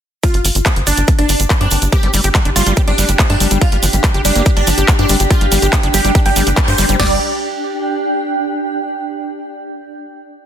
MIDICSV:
0, 0, Header, 1, 7, 480
1, 0, Start_track
1, 0, Tempo, 422535
1, 267, Time_signature, 4, 2, 24, 8
1, 11879, End_track
2, 0, Start_track
2, 0, Title_t, "Ambient pad"
2, 0, Program_c, 0, 92
2, 266, Note_on_c, 0, 62, 74
2, 488, Note_on_c, 0, 67, 85
2, 1128, Note_on_c, 0, 79, 79
2, 7933, Note_off_c, 0, 62, 0
2, 7946, Note_off_c, 0, 67, 0
2, 7946, Note_off_c, 0, 79, 0
2, 7947, Note_on_c, 0, 62, 75
2, 8018, Note_on_c, 0, 67, 79
2, 9821, Note_off_c, 0, 62, 0
2, 9821, Note_off_c, 0, 67, 0
2, 11879, End_track
3, 0, Start_track
3, 0, Title_t, "Supersaw synth"
3, 0, Program_c, 1, 81
3, 266, Note_on_c, 1, 65, 96
3, 442, Note_off_c, 1, 65, 0
3, 987, Note_on_c, 1, 62, 94
3, 1163, Note_off_c, 1, 62, 0
3, 1347, Note_on_c, 1, 62, 96
3, 1582, Note_off_c, 1, 62, 0
3, 1826, Note_on_c, 1, 62, 95
3, 2002, Note_off_c, 1, 62, 0
3, 2187, Note_on_c, 1, 67, 98
3, 2363, Note_off_c, 1, 67, 0
3, 2906, Note_on_c, 1, 65, 98
3, 3082, Note_off_c, 1, 65, 0
3, 3267, Note_on_c, 1, 62, 94
3, 3501, Note_off_c, 1, 62, 0
3, 3746, Note_on_c, 1, 62, 96
3, 3922, Note_off_c, 1, 62, 0
3, 4107, Note_on_c, 1, 65, 98
3, 4283, Note_off_c, 1, 65, 0
3, 4827, Note_on_c, 1, 62, 96
3, 5003, Note_off_c, 1, 62, 0
3, 5187, Note_on_c, 1, 62, 96
3, 5421, Note_off_c, 1, 62, 0
3, 5667, Note_on_c, 1, 62, 96
3, 5843, Note_off_c, 1, 62, 0
3, 6028, Note_on_c, 1, 65, 100
3, 6203, Note_off_c, 1, 65, 0
3, 6747, Note_on_c, 1, 67, 101
3, 6923, Note_off_c, 1, 67, 0
3, 7108, Note_on_c, 1, 67, 95
3, 7342, Note_off_c, 1, 67, 0
3, 7588, Note_on_c, 1, 72, 98
3, 7763, Note_off_c, 1, 72, 0
3, 7948, Note_on_c, 1, 74, 90
3, 8126, Note_off_c, 1, 74, 0
3, 11879, End_track
4, 0, Start_track
4, 0, Title_t, "Wobble bass"
4, 0, Program_c, 2, 39
4, 1827, Note_on_c, 2, 60, 85
4, 1903, Note_off_c, 2, 60, 0
4, 1946, Note_on_c, 2, 60, 79
4, 2023, Note_off_c, 2, 60, 0
4, 2187, Note_on_c, 2, 60, 91
4, 2264, Note_off_c, 2, 60, 0
4, 2307, Note_on_c, 2, 60, 72
4, 2384, Note_off_c, 2, 60, 0
4, 3146, Note_on_c, 2, 60, 91
4, 3223, Note_off_c, 2, 60, 0
4, 3266, Note_on_c, 2, 60, 80
4, 3343, Note_off_c, 2, 60, 0
4, 5667, Note_on_c, 2, 60, 88
4, 5744, Note_off_c, 2, 60, 0
4, 5787, Note_on_c, 2, 60, 75
4, 5864, Note_off_c, 2, 60, 0
4, 6867, Note_on_c, 2, 62, 93
4, 7539, Note_off_c, 2, 62, 0
4, 11879, End_track
5, 0, Start_track
5, 0, Title_t, "Acid bass"
5, 0, Program_c, 3, 38
5, 2186, Note_on_c, 3, 67, 102
5, 2241, Note_off_c, 3, 67, 0
5, 2307, Note_on_c, 3, 55, 80
5, 2362, Note_off_c, 3, 55, 0
5, 2427, Note_on_c, 3, 55, 75
5, 2509, Note_off_c, 3, 55, 0
5, 2547, Note_on_c, 3, 67, 75
5, 2602, Note_off_c, 3, 67, 0
5, 2667, Note_on_c, 3, 55, 101
5, 2722, Note_off_c, 3, 55, 0
5, 2787, Note_on_c, 3, 62, 79
5, 2842, Note_off_c, 3, 62, 0
5, 2907, Note_on_c, 3, 55, 101
5, 2989, Note_off_c, 3, 55, 0
5, 3027, Note_on_c, 3, 55, 100
5, 3109, Note_off_c, 3, 55, 0
5, 3147, Note_on_c, 3, 67, 100
5, 3202, Note_off_c, 3, 67, 0
5, 3267, Note_on_c, 3, 55, 79
5, 3322, Note_off_c, 3, 55, 0
5, 3387, Note_on_c, 3, 55, 80
5, 3469, Note_off_c, 3, 55, 0
5, 3507, Note_on_c, 3, 55, 81
5, 3540, Note_off_c, 3, 55, 0
5, 3627, Note_on_c, 3, 56, 106
5, 3660, Note_off_c, 3, 56, 0
5, 3747, Note_on_c, 3, 56, 73
5, 3780, Note_off_c, 3, 56, 0
5, 3867, Note_on_c, 3, 55, 99
5, 3949, Note_off_c, 3, 55, 0
5, 3987, Note_on_c, 3, 55, 102
5, 4069, Note_off_c, 3, 55, 0
5, 4107, Note_on_c, 3, 55, 81
5, 4140, Note_off_c, 3, 55, 0
5, 4227, Note_on_c, 3, 55, 80
5, 4282, Note_off_c, 3, 55, 0
5, 4347, Note_on_c, 3, 53, 101
5, 4380, Note_off_c, 3, 53, 0
5, 4467, Note_on_c, 3, 55, 79
5, 4500, Note_off_c, 3, 55, 0
5, 4587, Note_on_c, 3, 55, 80
5, 4669, Note_off_c, 3, 55, 0
5, 4707, Note_on_c, 3, 67, 78
5, 4789, Note_off_c, 3, 67, 0
5, 4827, Note_on_c, 3, 55, 97
5, 4909, Note_off_c, 3, 55, 0
5, 4947, Note_on_c, 3, 58, 99
5, 5029, Note_off_c, 3, 58, 0
5, 5067, Note_on_c, 3, 67, 106
5, 5122, Note_off_c, 3, 67, 0
5, 5187, Note_on_c, 3, 55, 78
5, 5242, Note_off_c, 3, 55, 0
5, 5307, Note_on_c, 3, 53, 107
5, 5340, Note_off_c, 3, 53, 0
5, 5427, Note_on_c, 3, 67, 78
5, 5547, Note_on_c, 3, 56, 104
5, 5564, Note_off_c, 3, 67, 0
5, 5602, Note_off_c, 3, 56, 0
5, 5667, Note_on_c, 3, 67, 78
5, 5749, Note_off_c, 3, 67, 0
5, 5787, Note_on_c, 3, 55, 102
5, 5869, Note_off_c, 3, 55, 0
5, 5907, Note_on_c, 3, 67, 75
5, 5940, Note_off_c, 3, 67, 0
5, 6027, Note_on_c, 3, 67, 101
5, 6082, Note_off_c, 3, 67, 0
5, 6147, Note_on_c, 3, 55, 78
5, 6202, Note_off_c, 3, 55, 0
5, 6267, Note_on_c, 3, 55, 79
5, 6349, Note_off_c, 3, 55, 0
5, 6387, Note_on_c, 3, 67, 76
5, 6442, Note_off_c, 3, 67, 0
5, 6507, Note_on_c, 3, 55, 104
5, 6562, Note_off_c, 3, 55, 0
5, 6627, Note_on_c, 3, 62, 80
5, 6682, Note_off_c, 3, 62, 0
5, 6747, Note_on_c, 3, 55, 100
5, 6829, Note_off_c, 3, 55, 0
5, 6867, Note_on_c, 3, 55, 99
5, 6949, Note_off_c, 3, 55, 0
5, 6987, Note_on_c, 3, 67, 104
5, 7042, Note_off_c, 3, 67, 0
5, 7107, Note_on_c, 3, 55, 78
5, 7162, Note_off_c, 3, 55, 0
5, 7226, Note_on_c, 3, 55, 80
5, 7309, Note_off_c, 3, 55, 0
5, 7347, Note_on_c, 3, 55, 77
5, 7380, Note_off_c, 3, 55, 0
5, 7467, Note_on_c, 3, 56, 107
5, 7500, Note_off_c, 3, 56, 0
5, 7587, Note_on_c, 3, 56, 77
5, 7620, Note_off_c, 3, 56, 0
5, 7707, Note_on_c, 3, 55, 100
5, 7789, Note_off_c, 3, 55, 0
5, 7827, Note_on_c, 3, 55, 100
5, 7909, Note_off_c, 3, 55, 0
5, 7947, Note_on_c, 3, 55, 97
5, 8170, Note_off_c, 3, 55, 0
5, 11879, End_track
6, 0, Start_track
6, 0, Title_t, "Analog synth bass"
6, 0, Program_c, 4, 38
6, 386, Note_on_c, 4, 31, 87
6, 458, Note_off_c, 4, 31, 0
6, 507, Note_on_c, 4, 31, 99
6, 579, Note_off_c, 4, 31, 0
6, 627, Note_on_c, 4, 31, 94
6, 699, Note_off_c, 4, 31, 0
6, 867, Note_on_c, 4, 31, 93
6, 939, Note_off_c, 4, 31, 0
6, 987, Note_on_c, 4, 31, 99
6, 1059, Note_off_c, 4, 31, 0
6, 1107, Note_on_c, 4, 31, 88
6, 1179, Note_off_c, 4, 31, 0
6, 1347, Note_on_c, 4, 31, 88
6, 1419, Note_off_c, 4, 31, 0
6, 1467, Note_on_c, 4, 31, 101
6, 1539, Note_off_c, 4, 31, 0
6, 1586, Note_on_c, 4, 31, 87
6, 1658, Note_off_c, 4, 31, 0
6, 1826, Note_on_c, 4, 43, 85
6, 1898, Note_off_c, 4, 43, 0
6, 1946, Note_on_c, 4, 31, 96
6, 2018, Note_off_c, 4, 31, 0
6, 2066, Note_on_c, 4, 31, 93
6, 2138, Note_off_c, 4, 31, 0
6, 2306, Note_on_c, 4, 31, 86
6, 2378, Note_off_c, 4, 31, 0
6, 2426, Note_on_c, 4, 31, 102
6, 2498, Note_off_c, 4, 31, 0
6, 2546, Note_on_c, 4, 31, 92
6, 2618, Note_off_c, 4, 31, 0
6, 2786, Note_on_c, 4, 31, 89
6, 2859, Note_off_c, 4, 31, 0
6, 2907, Note_on_c, 4, 31, 100
6, 2979, Note_off_c, 4, 31, 0
6, 3027, Note_on_c, 4, 31, 90
6, 3099, Note_off_c, 4, 31, 0
6, 3266, Note_on_c, 4, 31, 86
6, 3338, Note_off_c, 4, 31, 0
6, 3386, Note_on_c, 4, 31, 101
6, 3458, Note_off_c, 4, 31, 0
6, 3506, Note_on_c, 4, 31, 96
6, 3579, Note_off_c, 4, 31, 0
6, 3747, Note_on_c, 4, 43, 84
6, 3819, Note_off_c, 4, 43, 0
6, 3866, Note_on_c, 4, 31, 96
6, 3939, Note_off_c, 4, 31, 0
6, 3987, Note_on_c, 4, 31, 91
6, 4059, Note_off_c, 4, 31, 0
6, 4227, Note_on_c, 4, 31, 84
6, 4299, Note_off_c, 4, 31, 0
6, 4347, Note_on_c, 4, 31, 97
6, 4419, Note_off_c, 4, 31, 0
6, 4467, Note_on_c, 4, 31, 93
6, 4539, Note_off_c, 4, 31, 0
6, 4707, Note_on_c, 4, 31, 91
6, 4779, Note_off_c, 4, 31, 0
6, 4827, Note_on_c, 4, 31, 97
6, 4899, Note_off_c, 4, 31, 0
6, 4947, Note_on_c, 4, 31, 91
6, 5019, Note_off_c, 4, 31, 0
6, 5187, Note_on_c, 4, 31, 89
6, 5259, Note_off_c, 4, 31, 0
6, 5307, Note_on_c, 4, 31, 99
6, 5379, Note_off_c, 4, 31, 0
6, 5427, Note_on_c, 4, 31, 93
6, 5499, Note_off_c, 4, 31, 0
6, 5668, Note_on_c, 4, 43, 84
6, 5739, Note_off_c, 4, 43, 0
6, 5787, Note_on_c, 4, 31, 99
6, 5859, Note_off_c, 4, 31, 0
6, 5907, Note_on_c, 4, 31, 94
6, 5979, Note_off_c, 4, 31, 0
6, 6147, Note_on_c, 4, 31, 89
6, 6219, Note_off_c, 4, 31, 0
6, 6267, Note_on_c, 4, 31, 100
6, 6339, Note_off_c, 4, 31, 0
6, 6387, Note_on_c, 4, 31, 96
6, 6459, Note_off_c, 4, 31, 0
6, 6627, Note_on_c, 4, 31, 88
6, 6699, Note_off_c, 4, 31, 0
6, 6747, Note_on_c, 4, 31, 103
6, 6819, Note_off_c, 4, 31, 0
6, 6867, Note_on_c, 4, 31, 87
6, 6939, Note_off_c, 4, 31, 0
6, 7107, Note_on_c, 4, 31, 90
6, 7179, Note_off_c, 4, 31, 0
6, 7227, Note_on_c, 4, 31, 98
6, 7299, Note_off_c, 4, 31, 0
6, 7347, Note_on_c, 4, 31, 88
6, 7419, Note_off_c, 4, 31, 0
6, 7587, Note_on_c, 4, 43, 86
6, 7659, Note_off_c, 4, 43, 0
6, 7707, Note_on_c, 4, 31, 96
6, 7779, Note_off_c, 4, 31, 0
6, 7827, Note_on_c, 4, 31, 92
6, 7899, Note_off_c, 4, 31, 0
6, 7947, Note_on_c, 4, 31, 98
6, 8170, Note_off_c, 4, 31, 0
6, 11879, End_track
7, 0, Start_track
7, 0, Title_t, "Drums"
7, 267, Note_on_c, 9, 36, 112
7, 267, Note_on_c, 9, 42, 80
7, 268, Note_on_c, 9, 82, 36
7, 380, Note_off_c, 9, 36, 0
7, 380, Note_off_c, 9, 42, 0
7, 381, Note_off_c, 9, 82, 0
7, 387, Note_on_c, 9, 42, 56
7, 500, Note_off_c, 9, 42, 0
7, 507, Note_on_c, 9, 46, 104
7, 512, Note_on_c, 9, 82, 87
7, 620, Note_off_c, 9, 46, 0
7, 625, Note_off_c, 9, 82, 0
7, 627, Note_on_c, 9, 42, 51
7, 630, Note_on_c, 9, 82, 55
7, 740, Note_off_c, 9, 42, 0
7, 744, Note_off_c, 9, 82, 0
7, 746, Note_on_c, 9, 36, 116
7, 747, Note_on_c, 9, 39, 126
7, 747, Note_on_c, 9, 42, 81
7, 747, Note_on_c, 9, 82, 41
7, 860, Note_off_c, 9, 36, 0
7, 860, Note_off_c, 9, 39, 0
7, 860, Note_off_c, 9, 42, 0
7, 861, Note_off_c, 9, 82, 0
7, 867, Note_on_c, 9, 42, 53
7, 980, Note_off_c, 9, 42, 0
7, 987, Note_on_c, 9, 46, 88
7, 988, Note_on_c, 9, 82, 93
7, 1099, Note_off_c, 9, 82, 0
7, 1099, Note_on_c, 9, 82, 51
7, 1100, Note_off_c, 9, 46, 0
7, 1107, Note_on_c, 9, 42, 54
7, 1213, Note_off_c, 9, 82, 0
7, 1220, Note_off_c, 9, 42, 0
7, 1222, Note_on_c, 9, 82, 41
7, 1226, Note_on_c, 9, 36, 116
7, 1227, Note_on_c, 9, 42, 83
7, 1335, Note_off_c, 9, 82, 0
7, 1340, Note_off_c, 9, 36, 0
7, 1340, Note_off_c, 9, 42, 0
7, 1347, Note_on_c, 9, 42, 55
7, 1460, Note_off_c, 9, 42, 0
7, 1464, Note_on_c, 9, 82, 80
7, 1467, Note_on_c, 9, 46, 106
7, 1578, Note_off_c, 9, 82, 0
7, 1580, Note_off_c, 9, 46, 0
7, 1587, Note_on_c, 9, 42, 55
7, 1588, Note_on_c, 9, 82, 55
7, 1701, Note_off_c, 9, 42, 0
7, 1702, Note_off_c, 9, 82, 0
7, 1706, Note_on_c, 9, 36, 114
7, 1706, Note_on_c, 9, 82, 37
7, 1707, Note_on_c, 9, 39, 123
7, 1707, Note_on_c, 9, 42, 39
7, 1820, Note_off_c, 9, 36, 0
7, 1820, Note_off_c, 9, 39, 0
7, 1820, Note_off_c, 9, 42, 0
7, 1820, Note_off_c, 9, 82, 0
7, 1827, Note_on_c, 9, 42, 51
7, 1941, Note_off_c, 9, 42, 0
7, 1941, Note_on_c, 9, 82, 81
7, 1947, Note_on_c, 9, 46, 86
7, 2054, Note_off_c, 9, 82, 0
7, 2060, Note_off_c, 9, 46, 0
7, 2067, Note_on_c, 9, 42, 53
7, 2072, Note_on_c, 9, 82, 57
7, 2181, Note_off_c, 9, 42, 0
7, 2186, Note_off_c, 9, 82, 0
7, 2186, Note_on_c, 9, 36, 121
7, 2187, Note_on_c, 9, 42, 78
7, 2188, Note_on_c, 9, 82, 41
7, 2300, Note_off_c, 9, 36, 0
7, 2300, Note_off_c, 9, 42, 0
7, 2302, Note_off_c, 9, 82, 0
7, 2307, Note_on_c, 9, 42, 54
7, 2420, Note_off_c, 9, 42, 0
7, 2426, Note_on_c, 9, 82, 93
7, 2427, Note_on_c, 9, 46, 112
7, 2539, Note_off_c, 9, 82, 0
7, 2539, Note_on_c, 9, 82, 53
7, 2540, Note_off_c, 9, 46, 0
7, 2547, Note_on_c, 9, 42, 52
7, 2653, Note_off_c, 9, 82, 0
7, 2660, Note_off_c, 9, 42, 0
7, 2666, Note_on_c, 9, 36, 120
7, 2667, Note_on_c, 9, 39, 123
7, 2667, Note_on_c, 9, 42, 76
7, 2670, Note_on_c, 9, 82, 39
7, 2780, Note_off_c, 9, 36, 0
7, 2780, Note_off_c, 9, 39, 0
7, 2780, Note_off_c, 9, 42, 0
7, 2783, Note_off_c, 9, 82, 0
7, 2787, Note_on_c, 9, 42, 54
7, 2900, Note_off_c, 9, 42, 0
7, 2907, Note_on_c, 9, 46, 93
7, 2914, Note_on_c, 9, 82, 102
7, 3020, Note_off_c, 9, 46, 0
7, 3024, Note_off_c, 9, 82, 0
7, 3024, Note_on_c, 9, 82, 55
7, 3027, Note_on_c, 9, 42, 53
7, 3137, Note_off_c, 9, 82, 0
7, 3140, Note_off_c, 9, 42, 0
7, 3141, Note_on_c, 9, 82, 43
7, 3146, Note_on_c, 9, 36, 118
7, 3147, Note_on_c, 9, 42, 78
7, 3255, Note_off_c, 9, 82, 0
7, 3260, Note_off_c, 9, 36, 0
7, 3260, Note_off_c, 9, 42, 0
7, 3267, Note_on_c, 9, 42, 55
7, 3380, Note_off_c, 9, 42, 0
7, 3387, Note_on_c, 9, 46, 109
7, 3391, Note_on_c, 9, 82, 97
7, 3500, Note_off_c, 9, 46, 0
7, 3503, Note_off_c, 9, 82, 0
7, 3503, Note_on_c, 9, 82, 56
7, 3507, Note_on_c, 9, 42, 53
7, 3616, Note_off_c, 9, 82, 0
7, 3620, Note_off_c, 9, 42, 0
7, 3626, Note_on_c, 9, 36, 120
7, 3627, Note_on_c, 9, 39, 127
7, 3627, Note_on_c, 9, 42, 37
7, 3630, Note_on_c, 9, 82, 42
7, 3740, Note_off_c, 9, 36, 0
7, 3740, Note_off_c, 9, 39, 0
7, 3740, Note_off_c, 9, 42, 0
7, 3744, Note_off_c, 9, 82, 0
7, 3747, Note_on_c, 9, 42, 52
7, 3860, Note_off_c, 9, 42, 0
7, 3867, Note_on_c, 9, 46, 91
7, 3872, Note_on_c, 9, 82, 87
7, 3980, Note_off_c, 9, 46, 0
7, 3985, Note_off_c, 9, 82, 0
7, 3985, Note_on_c, 9, 82, 52
7, 3987, Note_on_c, 9, 42, 50
7, 4099, Note_off_c, 9, 82, 0
7, 4101, Note_off_c, 9, 42, 0
7, 4107, Note_on_c, 9, 36, 120
7, 4107, Note_on_c, 9, 42, 77
7, 4108, Note_on_c, 9, 82, 40
7, 4220, Note_off_c, 9, 36, 0
7, 4220, Note_off_c, 9, 42, 0
7, 4221, Note_off_c, 9, 82, 0
7, 4227, Note_on_c, 9, 42, 55
7, 4340, Note_off_c, 9, 42, 0
7, 4347, Note_on_c, 9, 46, 112
7, 4348, Note_on_c, 9, 82, 95
7, 4460, Note_off_c, 9, 46, 0
7, 4462, Note_off_c, 9, 82, 0
7, 4467, Note_on_c, 9, 42, 51
7, 4468, Note_on_c, 9, 82, 56
7, 4580, Note_off_c, 9, 42, 0
7, 4582, Note_off_c, 9, 82, 0
7, 4585, Note_on_c, 9, 82, 44
7, 4587, Note_on_c, 9, 36, 127
7, 4587, Note_on_c, 9, 39, 121
7, 4587, Note_on_c, 9, 42, 76
7, 4699, Note_off_c, 9, 82, 0
7, 4700, Note_off_c, 9, 36, 0
7, 4700, Note_off_c, 9, 39, 0
7, 4700, Note_off_c, 9, 42, 0
7, 4707, Note_on_c, 9, 42, 51
7, 4821, Note_off_c, 9, 42, 0
7, 4827, Note_on_c, 9, 46, 99
7, 4828, Note_on_c, 9, 82, 106
7, 4941, Note_off_c, 9, 46, 0
7, 4942, Note_off_c, 9, 82, 0
7, 4945, Note_on_c, 9, 82, 55
7, 4947, Note_on_c, 9, 42, 52
7, 5059, Note_off_c, 9, 82, 0
7, 5061, Note_off_c, 9, 42, 0
7, 5063, Note_on_c, 9, 82, 40
7, 5067, Note_on_c, 9, 36, 124
7, 5067, Note_on_c, 9, 42, 78
7, 5176, Note_off_c, 9, 82, 0
7, 5180, Note_off_c, 9, 36, 0
7, 5181, Note_off_c, 9, 42, 0
7, 5187, Note_on_c, 9, 42, 51
7, 5301, Note_off_c, 9, 42, 0
7, 5306, Note_on_c, 9, 82, 89
7, 5307, Note_on_c, 9, 46, 113
7, 5420, Note_off_c, 9, 46, 0
7, 5420, Note_off_c, 9, 82, 0
7, 5426, Note_on_c, 9, 82, 57
7, 5427, Note_on_c, 9, 42, 53
7, 5540, Note_off_c, 9, 82, 0
7, 5541, Note_off_c, 9, 42, 0
7, 5547, Note_on_c, 9, 36, 127
7, 5547, Note_on_c, 9, 39, 121
7, 5547, Note_on_c, 9, 42, 37
7, 5547, Note_on_c, 9, 82, 45
7, 5660, Note_off_c, 9, 36, 0
7, 5660, Note_off_c, 9, 82, 0
7, 5661, Note_off_c, 9, 39, 0
7, 5661, Note_off_c, 9, 42, 0
7, 5667, Note_on_c, 9, 42, 48
7, 5781, Note_off_c, 9, 42, 0
7, 5781, Note_on_c, 9, 82, 88
7, 5787, Note_on_c, 9, 46, 95
7, 5895, Note_off_c, 9, 82, 0
7, 5901, Note_off_c, 9, 46, 0
7, 5907, Note_on_c, 9, 42, 52
7, 5908, Note_on_c, 9, 82, 59
7, 6021, Note_off_c, 9, 42, 0
7, 6021, Note_off_c, 9, 82, 0
7, 6027, Note_on_c, 9, 36, 123
7, 6027, Note_on_c, 9, 42, 75
7, 6037, Note_on_c, 9, 82, 40
7, 6140, Note_off_c, 9, 36, 0
7, 6141, Note_off_c, 9, 42, 0
7, 6147, Note_on_c, 9, 42, 52
7, 6151, Note_off_c, 9, 82, 0
7, 6261, Note_off_c, 9, 42, 0
7, 6267, Note_on_c, 9, 46, 115
7, 6268, Note_on_c, 9, 82, 95
7, 6380, Note_off_c, 9, 46, 0
7, 6381, Note_off_c, 9, 82, 0
7, 6387, Note_on_c, 9, 42, 48
7, 6389, Note_on_c, 9, 82, 53
7, 6501, Note_off_c, 9, 42, 0
7, 6503, Note_off_c, 9, 82, 0
7, 6507, Note_on_c, 9, 36, 127
7, 6507, Note_on_c, 9, 39, 116
7, 6507, Note_on_c, 9, 42, 72
7, 6512, Note_on_c, 9, 82, 43
7, 6620, Note_off_c, 9, 36, 0
7, 6621, Note_off_c, 9, 39, 0
7, 6621, Note_off_c, 9, 42, 0
7, 6626, Note_off_c, 9, 82, 0
7, 6627, Note_on_c, 9, 42, 50
7, 6741, Note_off_c, 9, 42, 0
7, 6747, Note_on_c, 9, 46, 94
7, 6747, Note_on_c, 9, 82, 107
7, 6860, Note_off_c, 9, 82, 0
7, 6861, Note_off_c, 9, 46, 0
7, 6867, Note_on_c, 9, 42, 53
7, 6869, Note_on_c, 9, 82, 54
7, 6980, Note_off_c, 9, 42, 0
7, 6982, Note_off_c, 9, 82, 0
7, 6987, Note_on_c, 9, 36, 123
7, 6987, Note_on_c, 9, 42, 75
7, 6995, Note_on_c, 9, 82, 41
7, 7100, Note_off_c, 9, 36, 0
7, 7100, Note_off_c, 9, 42, 0
7, 7107, Note_on_c, 9, 42, 51
7, 7108, Note_off_c, 9, 82, 0
7, 7221, Note_off_c, 9, 42, 0
7, 7225, Note_on_c, 9, 82, 97
7, 7227, Note_on_c, 9, 46, 113
7, 7338, Note_off_c, 9, 82, 0
7, 7340, Note_off_c, 9, 46, 0
7, 7347, Note_on_c, 9, 42, 50
7, 7350, Note_on_c, 9, 82, 52
7, 7460, Note_off_c, 9, 42, 0
7, 7462, Note_off_c, 9, 82, 0
7, 7462, Note_on_c, 9, 82, 44
7, 7467, Note_on_c, 9, 36, 127
7, 7467, Note_on_c, 9, 39, 117
7, 7467, Note_on_c, 9, 42, 35
7, 7576, Note_off_c, 9, 82, 0
7, 7580, Note_off_c, 9, 39, 0
7, 7580, Note_off_c, 9, 42, 0
7, 7581, Note_off_c, 9, 36, 0
7, 7587, Note_on_c, 9, 42, 51
7, 7700, Note_off_c, 9, 42, 0
7, 7701, Note_on_c, 9, 82, 88
7, 7707, Note_on_c, 9, 46, 100
7, 7814, Note_off_c, 9, 82, 0
7, 7820, Note_off_c, 9, 46, 0
7, 7827, Note_on_c, 9, 42, 51
7, 7828, Note_on_c, 9, 82, 52
7, 7941, Note_off_c, 9, 42, 0
7, 7941, Note_off_c, 9, 82, 0
7, 7947, Note_on_c, 9, 38, 102
7, 7947, Note_on_c, 9, 43, 106
7, 7947, Note_on_c, 9, 49, 84
7, 8061, Note_off_c, 9, 38, 0
7, 8061, Note_off_c, 9, 43, 0
7, 8061, Note_off_c, 9, 49, 0
7, 11879, End_track
0, 0, End_of_file